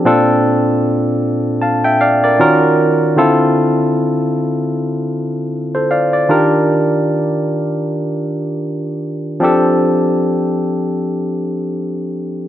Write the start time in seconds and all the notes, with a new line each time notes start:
0.05 A#2 C4 D4 F4 A4
1.62 F5 A5
1.84 E5 G5
2.01 D5 F5
2.24 A#4 D5
2.40 D#3 C#4 F4 F#4 A#4
3.16 D3 C4 E4 F4 A4
5.75 A4 C5
5.91 D5 F5
6.13 D5
6.29 D#3 D4 F4 G4 A#4
9.40 F3 C4 D4 G4
9.44 A4